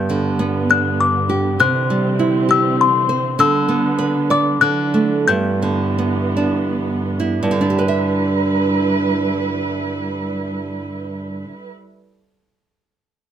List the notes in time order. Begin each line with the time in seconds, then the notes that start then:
Already playing: G2 D3 B3 G6
0.10 D3
0.39 B3
0.70 D4 F#6
1.01 D6
1.29 G4
1.60 C3 E3 C4 F#6
1.90 G3
2.19 E4
2.49 G4 E6
2.81 C6
3.09 C5
3.38 D3 G3 B3 E6
3.68 B3
3.99 B4
4.30 D5 D6
4.61 D3 E3 F#3 D4 F#6
4.94 A3
5.28 G2 B3 G6
5.62 D3
5.99 B3
6.37 D4
7.20 E4
7.43 G2
7.51 D3
7.61 D4
7.67 G3 E4 G4 B4
7.79 B4
7.88 E5